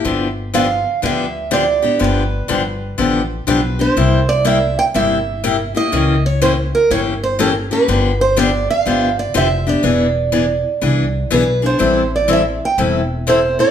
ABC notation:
X:1
M:4/4
L:1/8
Q:"Swing" 1/4=122
K:Gmix
V:1 name="Steel-string acoustic guitar"
z2 f2 e2 d2 | B4 z2 B c- | c d e g e3 _e- | _e ^c =c ^A ^c =c =A B- |
B c d f2 d e d- | d6 B c- | c d e g z2 c d |]
V:2 name="Steel-string acoustic guitar"
[D,F,B,DG] z [D,F,B,DG] z [D,F,B,DG] z [D,F,B,DG] [B,DG] | [D,F,B,DG] z [D,F,B,DG] z [D,F,B,DG] z [D,F,B,DG] [B,DG] | [C,G,_B,EG] z [C,G,B,EG] z [C,G,B,EG] z [C,G,B,EG] [B,EG] | [^C,E,^A,^CG] z [C,E,A,CG] z [C,E,A,CG] z [C,E,A,CG] [A,CG] |
[D,F,B,DG] z [D,F,B,DG] z [D,F,B,DG] z [D,F,B,DG] [B,DG] | [E,B,D^G] z [E,B,DG] z [E,B,DG] z [E,B,DG] [B,DG] | [E,G,CEA] z [E,G,CEA] z [E,G,CEA] z [E,G,CEA] [CEA] |]
V:3 name="Upright bass" clef=bass
G,,,4 D,,4 | G,,,2 G,,,2 A,,,2 B,,,2 | C,,4 G,,,4 | ^C,,4 G,,,4 |
G,,,4 G,,,2 F,,,2 | E,,,4 C,,2 B,,,2 | A,,,4 E,,,4 |]